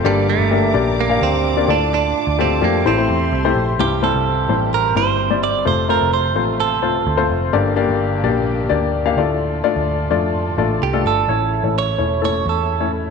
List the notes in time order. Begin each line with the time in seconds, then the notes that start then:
0.04 G1 G2 D3 G3 A#3 D4 G4 D5 A#5 D6
0.30 A3
0.39 G1
0.51 A#3 D4 G4 E5
0.74 A#1 A#3 D4 G4 D5
1.01 A#3
1.09 A#3 D4 G4 F5
1.21 D2 C4
1.57 A#3 D4 G4 D5
1.68 D2 A2 A3 D4 F4 D5 A5
1.94 D4
2.27 D2
2.39 A3 C4 D4 F4 G4
2.61 F2 A3 A#3 D4 F4 G4
2.85 A1 A2 E3 A3 C4 E4 G4 C5 E5 C6
2.98 A3 E4 G4 C5
3.09 E2
3.32 C2
3.45 A3 E4 G4 C5
3.55 A#1
3.79 C2 G2 C3 G3 C4 E4 G4 C5
4.02 G3 C4 E4 A4 C5
4.14 C2
4.49 A1 G3 C4 E4 C5
4.74 A#4
4.96 G1 G3 C4 E4 C5
5.30 G3 C4 E4 D5
5.44 D5
5.65 F1 C3 A3 C4 F4 C5
5.89 A3 C4 F4 A#4 C5
6.01 F1
6.14 C5
6.36 A1 A3 C4 F4 C5
6.60 A4
6.82 C2 A3 C4 F4 C5
7.07 D2
7.17 A3 C4 F4 C5
7.30 F1
7.53 G1 G2 D3 A#3 D4 G4 D5
7.76 A#3 D4 G4 D5
7.89 G1
8.23 A#1 A#3 D4 G4 D5
8.69 D2 A#3 D4 G4 D5
9.05 A#3 D4 G4 F5
9.17 D2 A2 D3 A3 D4 F4 A4 D5
9.64 A3 D4 F4 D5
9.76 D2
10.11 F2 A3 D4 F4 D5
10.58 A1 A3 D4 F4 D5
10.82 C2 G4
10.93 A3 D4 F4 A4
11.05 G1 A4
11.28 A1 A2 C#3 E3 A3 C#4 E4 C#5
11.63 A1 A3 C#4 E4 C#5
11.78 C#5
11.98 E1 A3 C#4 E4 C#5
12.21 A3 C#4 E4 A4 C#5
12.46 E2 A4
12.80 A3 C#4 E4 C#5